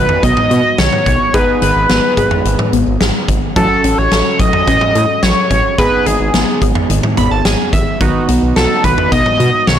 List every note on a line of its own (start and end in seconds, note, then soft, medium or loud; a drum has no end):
0.00 0.17 D#3 medium
0.00 1.30 B3 medium
0.00 1.30 D#4 medium
0.00 1.30 F#4 medium
0.00 0.25 B4 medium
0.09 mid tom medium
0.23 0.33 B1 loud
0.23 0.45 B3 medium
0.23 0.80 D#5 loud
0.23 kick medium
0.23 closed hi-hat medium
0.37 mid tom medium
0.51 0.61 B2 loud
0.51 0.73 F#4 medium
0.51 closed hi-hat medium
0.78 0.89 B1 loud
0.78 1.01 D#3 medium
0.78 1.36 C#5 loud
0.78 snare loud
0.78 closed hi-hat medium
0.93 mid tom medium
1.06 1.17 B1 medium
1.06 1.29 B3 medium
1.06 kick medium
1.06 closed hi-hat medium
1.34 1.44 G#1 loud
1.34 3.52 B3 medium
1.34 3.52 D#4 medium
1.34 1.56 G#4 loud
1.34 3.52 G#4 medium
1.34 1.61 B4 loud
1.34 kick loud
1.34 closed hi-hat medium
1.62 1.72 G#1 loud
1.62 1.84 D#3 medium
1.62 2.69 B4 medium
1.62 closed hi-hat medium
1.76 1.86 G#1 loud
1.89 2.00 G#1 medium
1.89 2.12 B3 medium
1.89 snare medium
1.89 closed hi-hat medium
2.17 2.28 G#1 medium
2.17 2.40 G#4 medium
2.17 kick medium
2.17 closed hi-hat medium
2.31 mid tom medium
2.45 2.56 G#1 loud
2.45 2.67 D#3 medium
2.45 closed hi-hat medium
2.59 mid tom medium
2.73 2.83 G#1 loud
2.73 2.95 B3 medium
2.73 closed hi-hat medium
2.87 2.97 G#1 loud
3.01 3.11 G#1 loud
3.01 3.23 G#4 medium
3.01 snare loud
3.01 closed hi-hat medium
3.28 3.39 G#1 medium
3.28 3.51 D#3 medium
3.28 kick medium
3.28 closed hi-hat medium
3.56 3.67 A1 loud
3.56 3.79 F#3 medium
3.56 5.75 C#4 medium
3.56 5.75 F#4 medium
3.56 4.00 A4 loud
3.56 5.75 A4 medium
3.56 kick loud
3.56 closed hi-hat medium
3.84 3.94 A1 loud
3.84 4.06 C#4 medium
3.84 closed hi-hat medium
3.98 4.08 A1 loud
3.98 4.41 C#5 loud
4.12 4.22 A1 medium
4.12 4.34 A4 medium
4.12 snare medium
4.12 closed hi-hat medium
4.39 4.50 A1 loud
4.39 4.62 F#3 medium
4.39 5.24 D#5 loud
4.39 kick medium
4.39 closed hi-hat medium
4.53 mid tom medium
4.67 4.78 A1 loud
4.67 4.90 C#4 medium
4.67 kick medium
4.67 closed hi-hat medium
4.81 mid tom medium
4.95 5.06 A2 loud
4.95 5.17 A4 medium
4.95 closed hi-hat medium
5.23 5.33 A1 loud
5.23 5.45 F#3 medium
5.23 5.78 C#5 loud
5.23 snare loud
5.23 closed hi-hat medium
5.51 5.61 A1 loud
5.51 5.73 C#4 medium
5.51 kick medium
5.51 closed hi-hat medium
5.78 5.89 G#1 loud
5.78 7.97 B3 medium
5.78 7.97 D#4 medium
5.78 7.97 G#4 medium
5.78 6.01 G#4 loud
5.78 6.08 B4 loud
5.78 kick loud
5.78 closed hi-hat medium
6.06 6.17 G#1 loud
6.06 6.29 D#3 medium
6.06 6.62 G#4 medium
6.06 closed hi-hat medium
6.20 6.30 G#1 medium
6.34 6.44 G#1 loud
6.34 6.56 B3 medium
6.34 snare medium
6.34 closed hi-hat medium
6.62 6.72 G#1 medium
6.62 6.84 G#4 medium
6.62 kick medium
6.62 closed hi-hat medium
6.75 mid tom medium
6.90 7.00 G#1 loud
6.90 7.12 D#3 medium
6.90 closed hi-hat medium
7.03 mid tom medium
7.17 7.28 G#1 loud
7.17 7.40 B3 medium
7.17 7.30 B5 medium
7.17 closed hi-hat medium
7.17 mid tom medium
7.31 7.42 G#1 medium
7.31 7.44 A5 medium
7.45 7.56 G#1 medium
7.45 7.68 G#4 medium
7.45 7.71 G#5 medium
7.45 snare loud
7.45 closed hi-hat medium
7.73 7.83 A1 medium
7.73 7.95 D#3 medium
7.73 7.99 E5 medium
7.73 kick medium
7.73 closed hi-hat medium
8.01 8.11 B1 loud
8.01 8.23 D#3 medium
8.01 9.79 B3 medium
8.01 9.79 D#4 medium
8.01 9.79 F#4 medium
8.01 kick loud
8.01 closed hi-hat medium
8.29 8.39 B1 medium
8.29 8.51 B3 medium
8.29 closed hi-hat medium
8.42 8.53 B1 medium
8.56 8.67 B1 loud
8.56 8.79 F#4 medium
8.56 8.86 A4 medium
8.56 snare medium
8.56 closed hi-hat medium
8.84 8.94 B1 loud
8.84 9.06 D#3 medium
8.84 9.11 B4 loud
8.84 kick medium
8.84 closed hi-hat medium
8.98 mid tom medium
9.12 9.22 B1 loud
9.12 9.34 B3 medium
9.12 9.69 D#5 loud
9.12 kick medium
9.12 closed hi-hat medium
9.26 mid tom medium
9.40 9.50 B2 loud
9.40 9.62 F#4 medium
9.40 closed hi-hat medium
9.67 9.78 B1 loud
9.67 9.79 D#3 medium
9.67 9.79 C#5 loud
9.67 snare loud
9.67 closed hi-hat medium